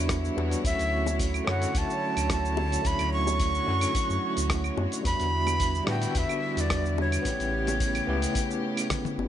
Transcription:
Already playing: sub bass E2, string section D3 E3 E4 C#5, tine electric piano G3 B3 D4 F#4
0.09 kick, cross-stick, open hi-hat, shaker
0.25 shaker
0.36 sub bass E2, tine electric piano G3 B3 D4 F#4, high bongo
0.51 open hi-hat, shaker
0.62 sub bass D2, string section D3 F#3, tine electric piano A3 C#4, kick, open hi-hat, shaker
0.66 tine electric piano E4 F#4, flute E5
0.79 sub bass D2, open hi-hat, shaker
1.06 high bongo, shaker
1.19 kick, open hi-hat, shaker
1.34 claves, shaker
1.44 sub bass F#2, tine electric piano A3 C#4, cross-stick
1.49 tine electric piano E4 F#4, flute F#5
1.62 open hi-hat, shaker
1.75 sub bass D2, flute A5, kick, open hi-hat, shaker
1.90 shaker
2.17 sub bass D2, open hi-hat, claves, shaker
2.30 flute A5, kick, cross-stick, open hi-hat, shaker
2.45 shaker
2.57 high bongo
2.72 open hi-hat, shaker
2.82 sub bass D2, tine electric piano A3 C#4, string section F#4, kick, open hi-hat, shaker
2.86 tine electric piano E4 F#4, flute B5
2.99 sub bass D2, open hi-hat, claves, shaker
3.13 flute C#6
3.27 high bongo, shaker
3.40 kick, open hi-hat, shaker
3.55 shaker
3.66 sub bass F#2, tine electric piano A3 C#4 E4 F#4
3.81 open hi-hat, claves, shaker
3.95 kick, open hi-hat, shaker
4.10 sub bass F#2, shaker
4.37 sub bass D2, open hi-hat, shaker
4.50 kick, cross-stick, open hi-hat, shaker
4.64 claves, shaker
4.77 sub bass F#2, high bongo
4.92 open hi-hat, shaker
5.02 sub bass E2, string section D3 G3 B3 E4, tine electric piano G3 B3, kick, open hi-hat, shaker
5.06 tine electric piano D4 F#4, flute B5
5.20 sub bass E2, open hi-hat, shaker
5.47 high bongo, claves, shaker
5.60 kick, open hi-hat, shaker
5.75 shaker
5.84 sub bass A2, tine electric piano G3 B3, cross-stick
5.88 tine electric piano D4 F#4, flute G5
6.02 open hi-hat, shaker
6.15 sub bass E2, flute E5, kick, open hi-hat, shaker
6.29 claves, shaker
6.57 sub bass E2, flute D5, open hi-hat, shaker
6.70 kick, cross-stick, open hi-hat, shaker
6.86 shaker
6.98 flute C#5, high bongo
7.12 open hi-hat, claves, shaker
7.22 sub bass A1, string section C#3 A3 G4, tine electric piano B3 C#4, kick, open hi-hat, shaker
7.27 tine electric piano E4 G4
7.40 sub bass A1, open hi-hat, shaker
7.67 open hi-hat, high bongo, shaker
7.80 kick, open hi-hat, shaker
7.95 open hi-hat, claves, shaker
8.07 sub bass C#2, tine electric piano B3 C#4 E4 G4
8.22 open hi-hat, shaker
8.35 kick, open hi-hat, shaker
8.51 shaker
8.77 open hi-hat, claves, shaker
8.90 kick, cross-stick, open hi-hat, high tom, shaker
9.05 high tom, shaker
9.18 sub bass G1, high bongo

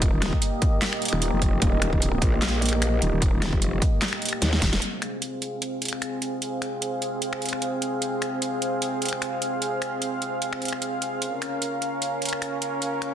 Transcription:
Already playing: wobble bass D#1, supersaw synth A#3 G4 D#5
0.02 kick, closed hi-hat
0.13 wobble bass D#1
0.22 finger snap, snare, closed hi-hat
0.33 kick
0.42 closed hi-hat
0.62 kick, closed hi-hat
0.82 snare, clap, closed hi-hat
0.93 finger snap
1.02 closed hi-hat
1.05 closed hi-hat
1.08 closed hi-hat
1.13 wobble bass D#1, finger snap
1.22 closed hi-hat
1.33 wobble bass F1
1.42 kick, closed hi-hat
1.62 wobble bass D#1, kick, closed hi-hat
1.82 finger snap, closed hi-hat
1.93 kick
2.02 closed hi-hat
2.22 wobble bass A#1, kick, closed hi-hat
2.42 snare, clap, closed hi-hat
2.62 closed hi-hat
2.66 closed hi-hat
2.69 closed hi-hat
2.73 finger snap
2.82 finger snap, closed hi-hat
3.02 wobble bass D#1, closed hi-hat
3.13 wobble bass D#1
3.22 kick, closed hi-hat
3.33 wobble bass D#1
3.42 finger snap, snare, closed hi-hat
3.53 wobble bass F1, kick
3.62 closed hi-hat
3.82 kick, closed hi-hat
4.02 snare, clap, closed hi-hat
4.13 finger snap
4.22 closed hi-hat
4.25 closed hi-hat
4.29 closed hi-hat
4.33 finger snap
4.42 wobble bass D#2, snare, closed hi-hat
4.53 snare
4.62 wobble bass D#1, kick, snare, closed hi-hat
4.73 snare, closed hi-hat
4.82 supersaw synth C4 G#4 F5, closed hi-hat
5.02 finger snap, closed hi-hat
5.22 closed hi-hat
5.42 closed hi-hat
5.62 closed hi-hat
5.82 closed hi-hat
5.85 closed hi-hat
5.88 closed hi-hat
5.93 finger snap
6.02 finger snap, closed hi-hat
6.22 closed hi-hat
6.42 closed hi-hat
6.62 finger snap, closed hi-hat
6.82 closed hi-hat
7.02 closed hi-hat
7.22 closed hi-hat
7.33 finger snap
7.42 closed hi-hat
7.46 closed hi-hat
7.49 closed hi-hat
7.53 finger snap
7.62 closed hi-hat
7.82 closed hi-hat
8.02 closed hi-hat
8.22 finger snap, closed hi-hat
8.42 closed hi-hat
8.62 closed hi-hat
8.82 closed hi-hat
9.02 closed hi-hat
9.05 closed hi-hat
9.08 closed hi-hat
9.13 finger snap
9.22 finger snap, closed hi-hat
9.42 closed hi-hat
9.62 closed hi-hat
9.82 finger snap, closed hi-hat
10.02 closed hi-hat
10.22 closed hi-hat
10.42 closed hi-hat
10.53 finger snap
10.62 closed hi-hat
10.65 closed hi-hat
10.68 closed hi-hat
10.73 finger snap
10.82 closed hi-hat
11.02 closed hi-hat
11.22 supersaw synth C#4 A#4, closed hi-hat
11.42 finger snap, closed hi-hat
11.62 closed hi-hat
11.82 closed hi-hat
12.02 closed hi-hat
12.22 closed hi-hat
12.25 closed hi-hat
12.29 closed hi-hat
12.33 finger snap
12.42 finger snap, closed hi-hat
12.62 closed hi-hat
12.82 closed hi-hat
13.02 finger snap, closed hi-hat

